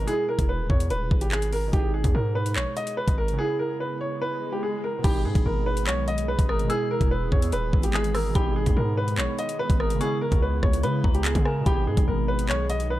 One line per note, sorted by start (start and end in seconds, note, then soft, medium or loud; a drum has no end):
0.02 1.66 B2 medium
0.02 1.69 G#3 medium
0.07 1.71 E4 medium
0.07 0.24 G#4 loud
0.07 closed hi-hat medium
0.13 1.73 G#4 medium
0.29 0.45 A#4 medium
0.39 0.61 E1 loud
0.39 kick medium
0.39 closed hi-hat medium
0.49 0.66 B4 medium
0.59 0.69 D#1 loud
0.69 0.92 E2 loud
0.69 0.86 C#5 medium
0.69 kick medium
0.80 closed hi-hat medium
0.90 1.10 D#1 loud
0.90 1.20 B4 medium
0.90 closed hi-hat medium
1.11 1.71 G#1 loud
1.11 kick medium
1.21 1.30 G4 medium
1.21 closed hi-hat medium
1.32 1.49 G#4 medium
1.32 clap loud
1.42 closed hi-hat medium
1.53 1.69 A#4 medium
1.53 open hi-hat medium
1.68 3.33 B2 medium
1.68 3.34 G#3 medium
1.73 2.03 G#1 loud
1.73 3.36 D#4 medium
1.73 1.90 G4 medium
1.73 kick loud
1.73 closed hi-hat medium
1.79 3.38 G#4 medium
1.94 2.11 G#4 medium
2.04 2.14 D#2 loud
2.04 kick medium
2.04 closed hi-hat medium
2.15 2.58 G#2 loud
2.15 2.31 A#4 medium
2.35 2.52 B4 medium
2.46 closed hi-hat medium
2.56 2.66 A#1 loud
2.56 2.73 C#5 medium
2.56 clap loud
2.77 2.93 D#5 medium
2.77 closed hi-hat medium
2.87 closed hi-hat medium
2.97 3.14 B4 medium
3.08 3.37 G#1 loud
3.08 kick medium
3.08 closed hi-hat medium
3.18 3.35 A#4 medium
3.28 closed hi-hat medium
3.33 4.98 C#3 medium
3.33 5.00 B3 medium
3.39 5.02 E4 medium
3.39 3.55 G#4 loud
3.39 swell medium
3.45 5.04 G#4 medium
3.59 3.76 A#4 medium
3.80 3.97 B4 medium
4.01 4.17 C#5 medium
4.22 4.51 B4 medium
4.52 4.61 G4 medium
4.63 4.80 G#4 medium
4.84 5.00 A#4 medium
4.99 6.63 B2 medium
4.99 6.65 G#3 medium
5.04 5.26 G#1 loud
5.04 6.68 D#3 medium
5.04 13.00 G#3 medium
5.04 6.68 B3 medium
5.04 6.67 D#4 medium
5.04 5.21 G4 loud
5.04 9.97 G#4 medium
5.04 6.45 B5 loud
5.04 kick loud
5.04 closed hi-hat medium
5.04 crash loud
5.10 6.69 G#4 medium
5.25 5.35 G#2 loud
5.25 5.42 G#4 medium
5.35 5.45 G#1 loud
5.35 kick medium
5.35 closed hi-hat medium
5.46 5.89 G#1 loud
5.46 5.62 A#4 medium
5.66 5.83 B4 medium
5.77 closed hi-hat medium
5.87 6.36 B1 loud
5.87 6.04 C#5 loud
5.87 clap loud
6.08 6.24 D#5 medium
6.08 closed hi-hat medium
6.18 closed hi-hat medium
6.28 6.45 B4 medium
6.39 6.68 G#1 loud
6.39 kick medium
6.39 closed hi-hat medium
6.49 6.66 A#4 medium
6.49 6.69 D#6 medium
6.49 cross-stick medium
6.59 closed hi-hat medium
6.64 8.28 B2 medium
6.64 8.31 G#3 medium
6.70 8.34 E3 medium
6.70 13.00 B3 medium
6.70 8.33 E4 medium
6.70 6.86 G#4 loud
6.70 7.90 E6 loud
6.70 closed hi-hat medium
6.75 8.35 G#4 medium
6.91 7.07 A#4 medium
7.01 7.23 E1 loud
7.01 kick medium
7.01 closed hi-hat medium
7.11 7.28 B4 medium
7.22 7.31 D#1 loud
7.32 7.54 E2 loud
7.32 7.48 C#5 medium
7.32 kick loud
7.42 closed hi-hat medium
7.52 7.72 D#1 loud
7.52 7.82 B4 medium
7.52 closed hi-hat medium
7.73 8.33 G#1 loud
7.73 kick medium
7.83 7.92 G4 medium
7.83 closed hi-hat medium
7.94 8.11 G#4 medium
7.94 8.14 D#6 medium
7.94 clap loud
8.04 closed hi-hat medium
8.15 8.31 A#4 medium
8.15 8.34 E6 medium
8.15 cross-stick medium
8.15 open hi-hat medium
8.30 9.95 B2 medium
8.30 9.97 G#3 medium
8.35 8.65 G#1 loud
8.35 9.99 D#3 medium
8.35 9.99 D#4 medium
8.35 8.52 G4 loud
8.35 9.76 B5 loud
8.35 kick loud
8.35 closed hi-hat medium
8.41 10.00 G#4 medium
8.56 8.73 G#4 medium
8.66 8.76 D#2 loud
8.66 kick medium
8.66 closed hi-hat medium
8.77 9.19 G#2 loud
8.77 8.93 A#4 medium
8.97 9.14 B4 medium
9.08 closed hi-hat medium
9.18 9.28 A#1 loud
9.18 9.35 C#5 medium
9.18 clap loud
9.39 9.55 D#5 medium
9.39 closed hi-hat medium
9.49 closed hi-hat medium
9.59 9.76 B4 loud
9.70 9.99 G#1 loud
9.70 kick loud
9.70 closed hi-hat medium
9.80 9.97 A#4 medium
9.80 10.00 D#6 medium
9.80 cross-stick medium
9.90 closed hi-hat medium
9.95 11.60 C#3 medium
9.95 11.62 B3 medium
10.01 11.65 C#3 medium
10.01 11.65 E4 medium
10.01 11.64 E4 medium
10.01 10.18 G#4 loud
10.01 10.79 C#6 loud
10.01 closed hi-hat medium
10.07 11.66 G#4 medium
10.21 10.38 A#4 medium
10.32 10.62 C#2 loud
10.32 kick medium
10.32 closed hi-hat medium
10.42 10.59 B4 medium
10.63 10.85 C#2 loud
10.63 10.80 C#5 medium
10.63 kick loud
10.63 cross-stick medium
10.73 closed hi-hat medium
10.83 11.03 C#3 loud
10.83 11.13 B4 medium
10.83 11.03 B5 medium
10.83 closed hi-hat medium
11.04 11.34 C#2 loud
11.04 11.43 A#5 medium
11.04 kick medium
11.15 11.23 G4 medium
11.15 closed hi-hat soft
11.25 11.42 G#4 medium
11.25 clap loud
11.25 closed hi-hat medium
11.35 11.65 C#3 loud
11.35 kick loud
11.35 closed hi-hat medium
11.45 11.62 A#4 medium
11.45 11.65 G#5 medium
11.45 cross-stick medium
11.61 13.00 B2 medium
11.61 13.00 G#3 medium
11.66 11.89 G#1 loud
11.66 13.00 D#3 medium
11.66 13.00 D#4 medium
11.66 11.83 G4 loud
11.66 13.00 G#4 medium
11.66 13.00 B5 loud
11.66 kick loud
11.66 closed hi-hat medium
11.72 13.00 G#4 medium
11.87 11.97 G#2 loud
11.87 12.04 G#4 medium
11.97 12.07 G#1 loud
11.97 kick medium
11.97 closed hi-hat medium
12.08 12.51 G#1 loud
12.08 12.24 A#4 medium
12.28 12.45 B4 medium
12.39 closed hi-hat medium
12.49 12.98 B1 loud
12.49 12.66 C#5 loud
12.49 clap loud
12.70 12.86 D#5 medium
12.70 closed hi-hat medium
12.80 closed hi-hat medium
12.90 13.00 B4 medium